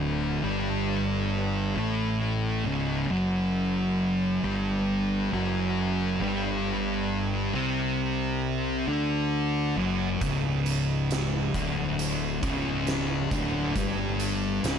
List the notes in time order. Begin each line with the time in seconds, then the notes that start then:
Already playing: D1 D2 D3
0.43 G1 G2 G3
1.76 A1 A2 A3
2.65 C#1 C#2 C#3
3.09 F#1 F#2 F#3
4.43 G1 G2 G3
5.32 F#1 F#2 F#3
6.20 G1 G2 G3
7.54 C2 C3 C4
8.87 D2 D3 D4
9.76 F#1 F#2 F#3
10.21 C#1 C#2 C#3, kick, closed hi-hat
10.66 closed hi-hat
11.11 snare, closed hi-hat
11.54 D1 D2 D3, kick, closed hi-hat
11.99 closed hi-hat
12.42 C#1 C#2 C#3, kick, closed hi-hat
12.87 snare, closed hi-hat
13.31 D1 D2 D3, kick, closed hi-hat
13.76 G1 G2 G3, kick, closed hi-hat
14.20 closed hi-hat
14.64 C#1 C#2 C#3, snare, closed hi-hat